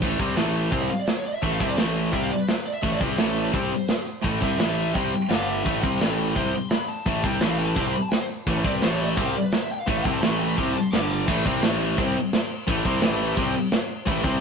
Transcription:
0.02 A1 A2 E3 A3, kick, crash
0.19 C2 C3 G3 C4, kick, open hi-hat
0.36 A1 A2 E3 A3, snare, open hi-hat
0.55 open hi-hat
0.72 C2 C3 G3 C4, kick, open hi-hat
0.81 E5
0.89 F5, open hi-hat
0.99 D5
1.07 C5, snare, open hi-hat
1.17 C#5
1.25 D5, open hi-hat
1.35 E5
1.42 A1 A2 E3 A3 E5, kick, open hi-hat
1.52 F5
1.60 C2 C3 G3 C4 E5, kick, open hi-hat
1.69 D5
1.78 A1 A2 E3 A3 C5, snare, open hi-hat
1.88 A4
1.96 open hi-hat
2.12 C2 C3 G3 C4 E5, kick, open hi-hat
2.22 F5
2.30 D5, open hi-hat
2.39 B4
2.47 C5, snare, open hi-hat
2.56 B4
2.65 D5, open hi-hat
2.74 E5
2.83 A1 A2 E3 A3 E5, kick, open hi-hat
2.92 D5
3.00 C2 C3 G3 C4 B4, kick, open hi-hat
3.10 G#4
3.18 A1 A2 E3 A3 A4, snare, open hi-hat
3.36 open hi-hat
3.44 B4
3.52 C2 C3 G3 C4 C5, kick, open hi-hat
3.72 open hi-hat
3.88 snare, open hi-hat
4.06 open hi-hat
4.23 A1 A2 E3 A3, kick, open hi-hat
4.41 C2 C3 G3 C4 E5, kick, open hi-hat
4.58 A1 A2 E3 A3, snare, open hi-hat
4.78 open hi-hat
4.94 C2 C3 G3 C4 G5, kick, open hi-hat
5.13 open hi-hat
5.29 G1 G2 D3 G3 F5, snare, open hi-hat
5.48 E5, open hi-hat
5.64 A1 A2 E3 A3, kick, open hi-hat
5.81 C2 C3 G3 C4 G5, kick, open hi-hat
6.00 A1 A2 E3 A3, snare, open hi-hat
6.19 open hi-hat
6.34 C2 C3 G3 C4 C6, kick, open hi-hat
6.54 open hi-hat
6.70 B5, snare, open hi-hat
6.89 A5, open hi-hat
7.06 A1 A2 E3 A3, kick, open hi-hat
7.24 C2 C3 G3 C4, kick, open hi-hat
7.41 A1 A2 E3 A3 E5, snare, open hi-hat
7.50 F5
7.58 G5, open hi-hat
7.67 A5
7.76 C2 C3 G3 C4 C6, kick, open hi-hat
7.81 D6
7.88 C6
7.93 B5, open hi-hat
8.02 A5
8.11 G5, snare, open hi-hat
8.20 C5
8.29 open hi-hat
8.47 A1 A2 E3 A3, kick, open hi-hat
8.64 C2 C3 G3 C4 D5, kick, open hi-hat
8.73 B4
8.82 A1 A2 E3 A3 C5, snare, open hi-hat
8.91 C#5
9.00 D5, open hi-hat
9.09 E5
9.17 C2 C3 G3 C4 E5, kick, open hi-hat
9.26 F5
9.35 D5, open hi-hat
9.44 B4
9.52 C5, snare, open hi-hat
9.62 E5
9.70 G5, open hi-hat
9.80 F5
9.87 A1 A2 E3 A3 E5, kick, open hi-hat
9.97 F5
10.05 C2 C3 G3 C4 G5, kick, open hi-hat
10.13 A5
10.21 A1 A2 E3 A3 C6, snare, open hi-hat
10.31 B5
10.39 G5, open hi-hat
10.47 B5
10.57 C2 C3 G3 C4 C6, kick, open hi-hat
10.65 E5
10.74 A5, open hi-hat
10.81 C6
10.92 G1 G2 D3 G3 D6, snare, open hi-hat
11.11 open hi-hat
11.27 A1 A2 E3 A3, kick, crash
11.45 C2 C3 G3 C4, kick
11.63 A1 A2 E3 A3, snare, crash
11.98 C2 C3 G3 C4, kick, crash
12.33 snare, crash
12.67 A1 A2 E3 A3, kick, crash
12.85 C2 C3 G3 C4, kick
13.02 A1 A2 E3 A3, snare, crash
13.37 C2 C3 G3 C4, kick, crash
13.72 snare, crash
14.06 A1 A2 E3 A3, kick, crash
14.23 C2 C3 G3 C4, kick

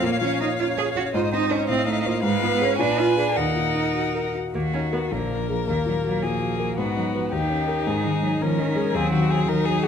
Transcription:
Already playing: F5
0.02 A#2 A#3 C#5
0.21 F3 C#4
0.40 A#3 D#4
0.59 C#4 F4
0.77 G#4 C#5
0.96 C#4 F#4
1.14 G#2 F4 C5 D#5
1.33 C4 D#4
1.50 C#4 D#4 C5
1.68 A2 C4 D#5 F5
1.87 A3 D#4
2.06 A#3 F4 C5
2.23 G#2 G#3 B4 F5
2.42 B3 F4
2.60 C#4 G#4 B4
2.78 A#2 D4 B4 G#5
2.98 F4
3.17 D4 G#4 B4
3.36 D#2 D#4 A#4 F#5
3.56 A#2
3.75 D#4
3.95 F#4
4.15 A#4
4.35 F#4
4.54 D#2 D#3 A#3 F#4
4.74 C#4 D#4
4.92 B3 F#4 A#4
5.11 A#1 D3 A#3 A#4
5.30 F3 D4
5.49 F3 G#4 A#4
5.67 D#2 D#3 A#3
5.86 A#2 F#3
6.04 F#3 F#4
6.22 A#2 F3 G#4
6.42 F#4
6.60 A#4
6.77 G#2 D#3 B3 F#4
6.96 F#3 D#4
7.14 F3 F#4 B4
7.32 D#2 D#3 D#4 G4
7.50 C#4
7.67 G4 A#4
7.87 G#2 D#3 G#4
8.03 D#3 G#3
8.22 F#3 D#4
8.41 D#3 F3 C#4 A#4
8.58 D#3 D#4
8.75 G#3 G#4
8.93 D#2 F#3 C4 G#4
9.11 D#3 F#4
9.29 F#4 G#4
9.46 D#3 D#4 A#4
9.65 F#4 G#4
9.83 F#4 G#4

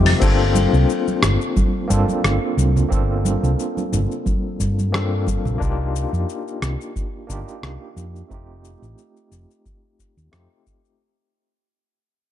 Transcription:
Already playing: F2 D#3 G3 A3 C4 D#4 F4 G4
0.06 open hi-hat, low conga, claves, shaker
0.18 G1 A#3 C4 D4, kick, crash, shaker
0.23 F4 A4
0.55 high conga, shaker
0.73 C2, shaker
0.90 shaker
1.08 high conga, shaker
1.22 G1, cross-stick, low conga, shaker
1.41 shaker
1.57 kick, high conga, shaker
1.87 G2 A#3 C4 D4, kick, shaker
1.92 F4 A4
2.08 high conga, shaker
2.24 G1, cross-stick, shaker
2.57 C2, high conga, shaker
2.76 low conga, shaker
2.89 G1 A#3 C4 D4, kick, shaker
2.93 F4 A4
3.25 high conga, shaker
3.43 C2, shaker
3.59 shaker
3.77 high conga, shaker
3.92 G1, low conga, shaker
4.11 shaker
4.26 kick, high conga, shaker
4.60 G2, kick, shaker
4.79 high conga, shaker
4.92 A#3 C4 D4 F4 A4, cross-stick, shaker
5.27 kick, high conga, shaker
5.45 A#1, low conga, shaker
5.58 C2 A#3 D4 D#4, kick, shaker
5.63 F4 G4
5.96 shaker
6.13 F2, shaker
6.29 shaker
6.48 shaker
6.62 C2, cross-stick, shaker
6.81 shaker
6.96 kick, shaker
7.27 G1 A#3 D4 D#4, kick, shaker
7.31 F4 G4
7.48 shaker
7.63 C2, cross-stick, shaker
7.96 F2, shaker
8.16 shaker
8.28 F1 A3 C4 D#4, kick, shaker
8.32 F4 G4
8.65 shaker
8.82 A1, shaker
8.98 shaker
9.17 shaker
9.31 F1, shaker
9.51 shaker
9.66 kick, shaker
9.99 kick, shaker
10.17 D#2, shaker
10.32 F2 A3 C4 D#4 F4 G4, cross-stick, shaker
10.67 kick, shaker
10.85 shaker

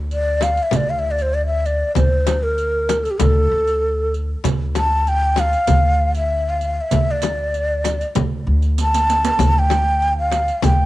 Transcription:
Already playing: D2
0.11 D5, riq
0.41 F5, riq, darbuka tek, frame drum
0.57 riq
0.63 E5
0.71 D2, riq, frame drum, darbuka dum
0.76 D5
0.90 F5
0.99 E5
1.11 D5
1.18 C5, riq
1.34 D5
1.46 E5
1.66 D5, riq, darbuka ka
1.95 D2 C5, riq, frame drum, darbuka dum
2.27 riq, darbuka tek, frame drum
2.43 A#4
2.58 riq
2.89 riq, darbuka tek, frame drum
3.04 A4, riq
3.11 G4
3.18 D2 A4, riq, frame drum, darbuka dum
3.52 D2
3.67 riq
4.14 riq, darbuka ka
4.44 D2, riq, frame drum, darbuka dum
4.75 A5, riq, darbuka tek, frame drum
5.07 G5, riq
5.36 F5, riq, darbuka tek, frame drum
5.53 riq
5.67 D2, riq, frame drum, darbuka dum
6.15 E5, riq
6.50 F5
6.61 riq, darbuka ka
6.81 E5
6.91 D2, riq, darbuka dum, frame drum
7.11 D5
7.22 riq, darbuka tek, frame drum
7.54 riq, darbuka ka
7.84 riq, darbuka tek, frame drum
8.01 riq
8.15 D2, riq, darbuka dum, frame drum
8.47 D2
8.62 riq, darbuka ka
8.78 riq, darbuka ka
8.82 A5
8.94 riq
9.10 riq
9.25 riq
9.39 D2, riq, frame drum, darbuka dum
9.59 G5
9.70 riq, darbuka tek, frame drum
10.02 riq
10.19 F5
10.32 riq, darbuka tek, frame drum
10.48 riq
10.62 D2 G5, riq, frame drum, darbuka dum

